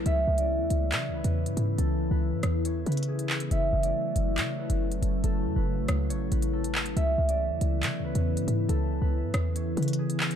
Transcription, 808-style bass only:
\new Staff \with { instrumentName = "808-style bass" } { \clef bass \time 4/4 \key cis \phrygian \tempo 4 = 139 cis,8 cis,8. e,16 cis,8 cis16. cis,16. e,8 gis,16 gis,8 | cis,8. cis,8 gis,16 e,4 cis4. | fis,,8 fis,,8 r8 fis,,8 cis8. fis,,8. fis,,8 | fis,,8 fis,16 fis,,8 gis,,16 cis,8 gis,,8 a,,4. |
cis,8 cis,8. e,16 cis,8 cis16. cis,16. e,8 gis,16 gis,8 | cis,8. cis,8 gis,16 e,4 cis4. | }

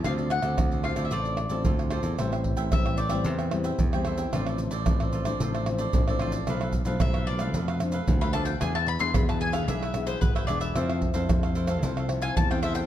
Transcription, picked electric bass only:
\new Staff \with { instrumentName = "Picked electric bass" } { \clef bass \time 4/4 \key d \minor \tempo 4 = 112 d,8. d,16 d,8. d,16 a,,8. a,,16 d,8. e,16 | \key a \minor a,,8. a,,16 a,,4 e,4 e,4 | a,,8. a,,16 r4 a,,4 a,,4 | b,,8. b,,16 b,,4 f,4 d,4 |
e,8. e,16 e,4 b,,4 gis,,8 e,,8 | f,8. f,16 f,4 c,4 e,4 | }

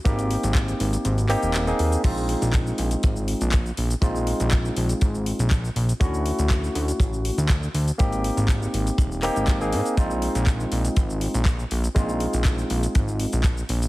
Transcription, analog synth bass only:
\new Staff \with { instrumentName = "Analog synth bass" } { \clef bass \time 4/4 \key aes \lydian \tempo 4 = 121 aes,,8 r16 aes,,8 r16 aes,,16 r16 aes,,8 r16 ees,,8 r16 ees,16 r16 | bes,,8 r16 bes,,8 r16 bes,,16 r16 aes,,8 r16 bes,,8 r16 bes,,16 r16 | bes,,8 r16 bes,,8 r16 bes,,16 r16 aes,,8 r16 bes,,8 r16 bes,,16 r16 | d,8 r16 d,8 r16 d,16 r16 a,,8 r16 d,8 r16 d,16 r16 |
aes,,8 r16 aes,,8 r16 aes,,16 r16 ees,,8 r16 aes,,8. aes,16 r16 | bes,,8 r16 bes,,8 r16 bes,,16 r16 aes,,8 r16 bes,,8 r16 bes,,16 r16 | bes,,8 r16 bes,,8 r16 bes,,16 r16 aes,,8 r16 bes,,8 r16 bes,,16 r16 | }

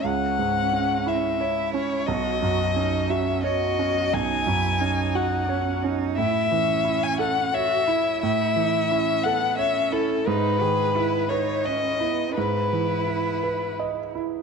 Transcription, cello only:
\new Staff \with { instrumentName = "Cello" } { \time 3/4 \key e \major \tempo 4 = 88 cis'2 e'4 | fis'8 fis'8 dis'8 cis'8 fis'4 | dis'8 e'8 dis'4 cis'8 dis'8 | e'8 cis'4. fis'8 e'8~ |
e'4 cis'8 b8 cis'4 | dis'8 gis'8 e'8 dis'8 cis'8 b8 | e'2~ e'8 r8 | }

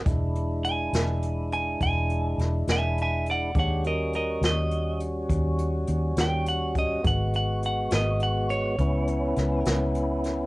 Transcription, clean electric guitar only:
\new Staff \with { instrumentName = "Clean electric guitar" } { \time 12/8 \key e \lydian \tempo 4. = 69 r4 gis''4. gis''8 gis''4 r8 <e'' gis''>8 <e'' gis''>8 <d'' fis''>8 | <cis'' fis''>8 <ais' dis''>8 <ais' dis''>8 dis''4 r2 g''8 fis''8 dis''8 | fis''8 fis''8 fis''8 dis''8 fis''8 cis''2 r4. | }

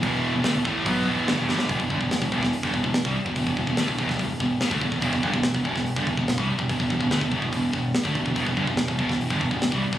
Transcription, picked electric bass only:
\new Staff \with { instrumentName = "Picked electric bass" } { \clef bass \time 4/4 \key e \minor \tempo 4 = 144 e,,8. e,,16 d,16 e,,16 a,,8 b,,8 e,,8 g,,16 e,,16 g,,8 | e,,16 e,,16 g,,16 e,,8 e,,16 e,,16 e,,8 g,,16 e,,16 e,,8 c,16 r16 e,,16 | e,,16 e,,16 e,,16 e,,16 d,16 e,,16 e,,16 e,,16 e,,8 e,,8 r16 d,16 e,,16 e,,16 | e,,16 e,,16 g,,16 e,,8 e,,16 e,,16 e,,8 g,,16 e,,16 e,,8 c,16 r16 e,,16 |
e,,16 e,,16 e,,16 e,,16 d,16 e,,16 e,,16 e,,16 e,,8 e,,8 r16 d,16 e,,16 e,,16 | e,,16 e,,16 g,,16 e,,8 e,,16 e,,16 e,,8 g,,16 e,,16 e,,8 c,16 r16 e,,16 | }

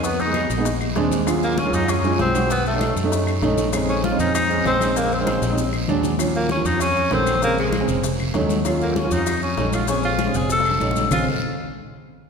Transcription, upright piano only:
\new Staff \with { instrumentName = "Upright piano" } { \time 4/4 \key bes \minor \tempo 4 = 195 r8. <aes ces' ees'>8. r16 <aes ces' ees'>16 r4 <aes c' d'>8. r16 | <ges aes des' f'>4 r16 <ges aes des' f'>8. r8 <ges aes des' f'>8. r16 <ges aes des' ges'>8 | r8. <a cis' dis'>8. r16 <a cis' dis'>8. r8 <a cis' dis'>8. r16 | <aes c' des' ees'>4 r16 <aes c' des' ees'>8. r8 <aes c' des' ees'>8. r16 <aes c' des' ees'>8~ |
<aes c' des' ees'>8 r16 <aes c' des' ees'>8. r16 <aes c' des' ees'>16 r4 <fis aes d'>8. r16 | <f ges des'>4 r16 <f ges des'>8. r4 <ees ges a des'>8. r16 | <des aes c'>4 r16 <des aes c'>8. r4 <ges a des' ees'>8. r16 | <ges des' f'>4 r16 <ges des' f'>8. r4 <ges a des' ees'>8. r16 |
<aes c' des'>4 r16 <aes c' des'>8. r4 <ges a des' ees'>8. r16 | <des aes c'>8 r2. r8 | }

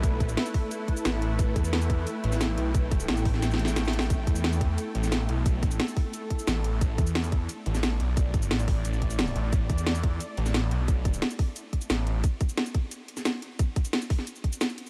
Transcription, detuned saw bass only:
\new Staff \with { instrumentName = "Detuned saw bass" } { \clef bass \time 4/4 \key c \major \tempo 4 = 177 b,,4 r2 a,,4 | a,,8 e,4. r8 a,,4 b,,8~ | b,,4 a,,4 a,,4 a,,4 | a,,8 e,4. r8 a,,4 b,,8~ |
b,,4 r2 a,,4 | a,,8 e,4. r8 a,,4 b,,8~ | b,,4 a,,4 a,,4. a,,8 | a,,8 e,4. r8 a,,4 b,,8~ |
b,,4 r2 a,,4 | r1 | r1 | }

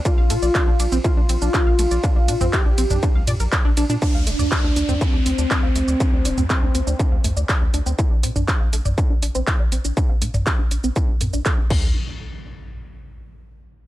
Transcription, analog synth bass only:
\new Staff \with { instrumentName = "Analog synth bass" } { \clef bass \time 4/4 \key d \minor \tempo 4 = 121 r16 bes,,16 bes,16 bes,,16 r16 bes,,16 bes,,16 bes,,16 r16 bes,,16 bes,,16 bes,,16 r16 bes,,16 bes,,16 bes,,16 | r16 bes,,16 bes,16 bes,,16 r16 bes,,16 bes,,16 bes,,16 r16 c,16 bes,16 bes,,16 r16 bes,,16 bes,,16 bes,16 | r16 d,16 d,,16 d,16 r16 d,16 d,16 d,16 r16 d,16 d,16 d,16 r16 d,16 d,16 d,16 | r16 d,16 d,,16 d,16 r16 d,16 d,16 d,16 r16 d,16 d,16 d,16 r16 d,16 d,16 d,16 |
r16 bes,,16 bes,16 bes,,16 r16 bes,,16 bes,,16 bes,,16 r16 bes,,16 bes,,16 bes,,16 r16 bes,,16 bes,,16 bes,,16 | r16 bes,,16 bes,16 bes,,16 r16 bes,,16 bes,,16 bes,,16 r16 bes,,16 bes,16 bes,,16 r16 bes,,16 d,8 | r1 | }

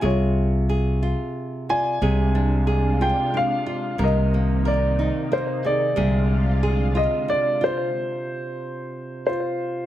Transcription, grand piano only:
\new Staff \with { instrumentName = "Grand piano" } { \time 3/4 \key c \minor \tempo 4 = 91 << { des''4. r4 aes''8~ | aes''4. g''8 f''4 | ees''4 d''4 c''8 d''8~ | d''4. ees''8 d''8 c''8~ |
c''2 c''4 | } \\ { f'4. r4 d''8~ | d''4. r4. | bes'4. r4 aes'8~ | aes'4. r4 f'8~ |
f'2 f'4 | } >> }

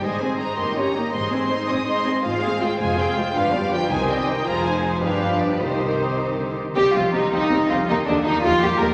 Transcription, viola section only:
\new Staff \with { instrumentName = "Viola section" } { \time 6/8 \key aes \lydian \tempo 4. = 108 << { ees'8 c'8 ees'8 ees'8 g'8 ees'8 | ees'8 c'8 ees'8 c'8 ees'8 c'8 | \key c \minor f'8 aes'8 f'8 f'8 aes'8 f'8 | d'8 b8 d'8 ees'8 c'8 ees'8 |
f'8. ees'8. d'4. | ees'2~ ees'8 r8 | g'8 g'8 g'8 g'8 g'8 g'8 | g'8 g'8 g'8 g'8 g'8 g'8 | } \\ { aes8 c'8 aes8 bes8 des'8 bes8 | aes8 c'8 aes8 c'8 aes8 c'8 | aes8 c'8 aes8 aes8 c'8 aes8 | f8 g8 f8 ees8 g8 ees8 |
f4. f4. | ees2~ ees8 r8 | c'8 c'8 c'8 c'8 c'8 c'8 | bes8 bes8 bes8 bes8 bes8 bes8 | } >> }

